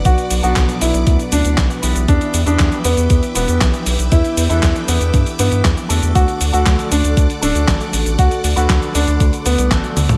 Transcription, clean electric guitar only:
\new Staff \with { instrumentName = "Clean electric guitar" } { \time 4/4 \key e \minor \tempo 4 = 118 <b, fis b d' fis'>8. <b, fis b d' a'>2~ <b, fis b d' a'>8. <e b d' e' g'>8~ | <e b d' e' g'>8. <e b d' e' g'>4.~ <e b d' e' g'>16 <e b d' e' g'>4.~ | <e b d' e' g'>8. <e b d' e' a'>2~ <e b d' e' a'>8. <d a d' fis' a'>8~ | <d a d' fis' a'>8. <d a d' fis' a'>4.~ <d a d' fis' a'>16 <d a d' fis' a'>4.~ |
<d a d' fis' a'>8. <d a d' fis' b'>2~ <d a d' fis' b'>16 <d a d' fis' a'>4 | }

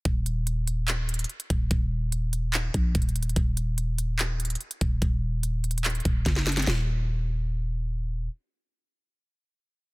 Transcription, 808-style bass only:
\new Staff \with { instrumentName = "808-style bass" } { \clef bass \time 4/4 \key ees \minor \tempo 4 = 145 ees,,2. r8 ees,,8 | ees,,2~ ees,,8 bes,,8 ees,,4 | ees,,2. r8 ees,,8 | ees,,2~ ees,,8 ees,,8 ges,,4 |
ees,,1 | r1 | }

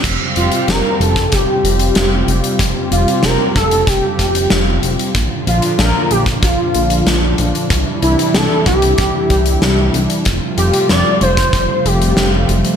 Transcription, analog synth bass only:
\new Staff \with { instrumentName = "Analog synth bass" } { \clef bass \time 4/4 \key f \major \tempo 4 = 94 f,,8 f,,8 f,,8 f,,8 f,,8 f,,8 f,,8 f,,8 | f,,8 f,,8 f,,8 f,,8 f,,8 f,,8 f,,8 f,,8 | bes,,8 bes,,8 bes,,8 bes,,8 bes,,8 bes,,8 bes,,8 bes,,8 | c,8 c,8 c,8 c,8 c,8 c,8 c,8 c,8 |
f,,8 f,,8 f,,8 f,,8 f,,8 f,,8 f,,8 f,,8 | }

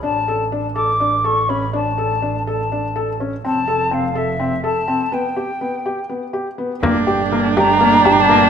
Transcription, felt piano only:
\new Staff \with { instrumentName = "Felt piano" } { \time 7/8 \key g \lydian \tempo 4 = 124 d'8 a'8 d'8 a'8 d'8 a'8 cis'8 | d'8 a'8 d'8 a'8 d'8 a'8 cis'8 | c'8 a'8 c'8 a'8 c'8 a'8 c'8 | b8 g'8 b8 g'8 b8 g'8 b8 |
bes8 g'8 bes8 g'8 bes8 g'8 bes8 | }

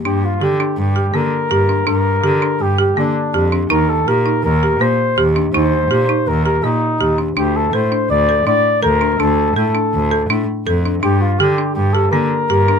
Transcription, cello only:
\new Staff \with { instrumentName = "Cello" } { \clef bass \time 5/4 \key g \minor \tempo 4 = 164 g,4 d8 r8 g,4 d8 r8 g,4 | g,4 d8 r8 g,4 d8 r8 f,4 | ees,4 bes,8 r8 ees,4 bes,8 r8 ees,4 | ees,4 bes,8 r8 ees,4 bes,8 r8 ees,4 |
d,4 a,8 r8 d,4 a,8 r8 d,4 | d,4 a,8 r8 d,4 a,8 r8 f,4 | g,4 d8 r8 g,4 d8 r8 g,4 | }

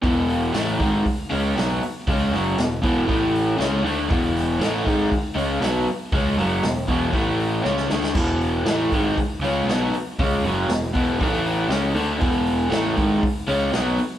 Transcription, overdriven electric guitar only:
\new Staff \with { instrumentName = "Overdriven electric guitar" } { \clef bass \time 4/4 \key e \mixolydian \tempo 4 = 118 <e, b, e>4 <a, e a>8 <gis, dis gis>8 r8 <cis gis cis'>8 <b, fis b>8 r8 | <cis gis cis'>8 <fis, cis fis>8 <e, b,>8 <e, b, e>8 <a, e a>4 <cis gis cis'>8 <d a d'>8 | <e, b, e>4 <a, e a>8 <gis, dis gis>8 r8 <cis gis cis'>8 <b, fis b>8 r8 | <cis gis cis'>8 <fis, cis fis>8 <e, b,>8 <e, b, e>8 <a, e a>4 <cis gis cis'>8 <d a d'>8 |
<e, b, e>4 <a, e a>8 <gis, dis gis>8 r8 <cis gis cis'>8 <b, fis b>8 r8 | <cis gis cis'>8 <fis, cis fis>8 <e, b,>8 <e, b, e>8 <a, e a>4 <cis gis cis'>8 <d a d'>8 | <e, b, e>4 <a, e a>8 <gis, dis gis>8 r8 <cis gis cis'>8 <b, fis b>8 r8 | }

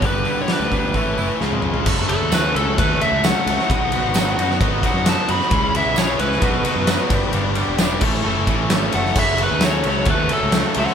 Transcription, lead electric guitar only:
\new Staff \with { instrumentName = "Lead electric guitar" } { \time 4/4 \key fis \dorian \tempo 4 = 132 b'8. cis''16 b'2 r4 | r8 a'8 b'8 a'8 b'8 e''8 fis''4~ | fis''2 r8 fis''8 a''8 b''8~ | b''8 e''8 cis''8 b'2~ b'8~ |
b'8 r2. fis''8 | e''8 b'8 cis''4 b'8 a'8 r8 <a' fis''>8 | }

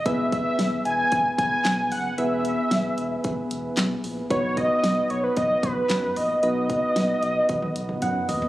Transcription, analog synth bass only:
\new Staff \with { instrumentName = "Analog synth bass" } { \clef bass \time 4/4 \key e \lydian \tempo 4 = 113 e,,4 e,,8 e,,8 e,,8 e,,8 b,,8 fis,,8 | e,,4 e,,8 e,,8 e,,8 e,,8 b,,8 ais,,8 | b,,4 b,,8 b,,8 b,,8 b,,8 fis,8 ais,,8 | b,,4 b,,8 b,,8 b,,8 b,,8 fis,8 dis,8 | }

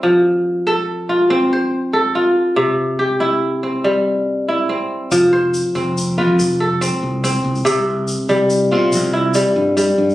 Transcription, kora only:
\new Staff \with { instrumentName = "Kora" } { \time 12/8 \key f \lydian \tempo 4. = 95 << { c'8 r4 a'4 f'4 c''4. f'4~ | f'8 r8 g'8 e'4 c'4. r4 c'4~ | c'8 c''4. r8 b'4 a'4. r4 | r2 r8 f'4 e'4. r4 | } \\ { f4 r8 a'4 r8 c'4 r8 a'4 r8 | c4 r8 e'4 r8 g4 r8 e'4 r8 | f4 r8 c'4 f'4 r8 c'4 c'4 | c4 r8 g4 c'4 r8 g4 g4 | } >> }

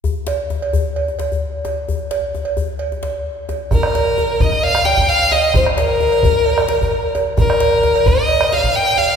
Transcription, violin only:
\new Staff \with { instrumentName = "Violin" } { \time 4/4 \key bes \mixolydian \tempo 4 = 131 r1 | r1 | bes'4. ees''8 f''8 g''8 f''8 ees''8 | c''8 bes'2. r8 |
bes'4. ees''4 f''8 g''8 f''8 | }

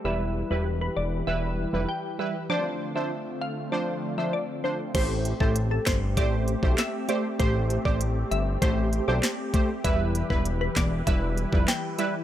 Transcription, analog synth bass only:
\new Staff \with { instrumentName = "Analog synth bass" } { \clef bass \time 4/4 \key a \minor \tempo 4 = 98 e,,8. e,,8. e,,8 e,,8. f,,16 r4 | r1 | a,,8. a,,8. g,,8 a,,8. b,,16 r4 | a,,8. a,,8. g,,8 a,,8. b,,16 r4 |
e,,8. e,,8. e,,8 e,,8. f,,16 r4 | }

